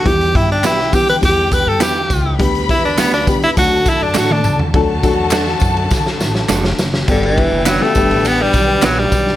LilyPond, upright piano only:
\new Staff \with { instrumentName = "Upright piano" } { \time 4/4 \key g \major \tempo 4 = 103 <g b e' g'>8. r8. <g b e' g'>16 r16 <g b e' g'>4 r4 | <g b d' g'>8. r8. <g b d' g'>16 r16 <fis a d' fis'>4 r4 | <fis a d' fis' a'>16 r16 <fis a d' fis' a'>4 r2 r8 | <g b d' g'>8. r8 <g b d' fis' g'>16 <g b d' g'>4 r4. | }